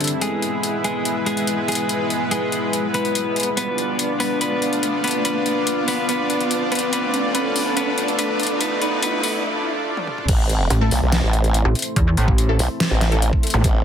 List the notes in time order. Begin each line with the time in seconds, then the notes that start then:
Already playing: D3 G3 C4 D4 E4 A4 G5, riser
0.01 closed hi-hat
0.04 closed hi-hat
0.07 closed hi-hat
0.21 G#3 B3 E4 G#4 B4, closed hi-hat
0.42 closed hi-hat
0.47 B4 G#5
0.63 closed hi-hat
0.84 G#3 G#4, closed hi-hat
1.05 closed hi-hat
1.26 G#3 G#4, closed hi-hat
1.37 closed hi-hat
1.47 closed hi-hat
1.68 G#3 G#4, closed hi-hat
1.72 closed hi-hat
1.75 closed hi-hat
1.89 closed hi-hat
2.10 closed hi-hat
2.31 G#3 G#4, closed hi-hat
2.52 closed hi-hat
2.73 closed hi-hat
2.94 B3 B4, closed hi-hat
3.05 closed hi-hat
3.15 closed hi-hat
3.36 closed hi-hat
3.40 closed hi-hat
3.43 closed hi-hat
3.57 B3 D4 F4 B4 D5, closed hi-hat
3.78 closed hi-hat
3.83 F5
3.99 closed hi-hat
4.20 B3 B4, open hi-hat
4.41 B3 B4, closed hi-hat
4.62 closed hi-hat
4.73 closed hi-hat
4.83 closed hi-hat
5.04 B3 B4, closed hi-hat
5.08 closed hi-hat
5.11 closed hi-hat
5.25 B3 B4, closed hi-hat
5.46 closed hi-hat
5.67 closed hi-hat
5.88 B3 B4, open hi-hat
6.09 B3 B4, closed hi-hat
6.30 closed hi-hat
6.41 closed hi-hat
6.51 closed hi-hat
6.72 B3 B4, closed hi-hat
6.75 closed hi-hat
6.79 closed hi-hat
6.93 A3 B3 B4, closed hi-hat
7.00 A4
7.14 closed hi-hat
7.34 B3 B4, closed hi-hat
7.56 open hi-hat
7.76 B3 B4, closed hi-hat
7.98 closed hi-hat
8.08 closed hi-hat
8.19 B3 B4, closed hi-hat
8.40 closed hi-hat
8.43 closed hi-hat
8.47 closed hi-hat
8.60 B3 B4, closed hi-hat
8.81 B3 B4, closed hi-hat
9.02 B3 B4, closed hi-hat
9.23 B3 B4, open hi-hat
9.97 high tom
10.07 mid tom
10.18 mid tom
10.28 A1 A3 C4 E4 C5, kick, closed hi-hat, crash
10.49 closed hi-hat
10.70 A1, closed hi-hat
10.81 A3 E4 A4
10.91 B1, open hi-hat
11.02 B1
11.12 snare, closed hi-hat
11.23 A1
11.33 closed hi-hat
11.44 closed hi-hat
11.54 closed hi-hat
11.65 A1
11.75 closed hi-hat
11.79 closed hi-hat
11.82 closed hi-hat
11.96 E2, kick, closed hi-hat
12.17 A1, closed hi-hat
12.28 kick
12.38 closed hi-hat
12.49 A3 E4 A4
12.59 B1, open hi-hat
12.80 snare, closed hi-hat
12.91 A1
13.01 snare, closed hi-hat
13.12 A3 E4 A4, closed hi-hat
13.22 closed hi-hat
13.33 kick
13.43 closed hi-hat
13.47 closed hi-hat
13.50 A1, closed hi-hat, zap
13.64 A1, kick, closed hi-hat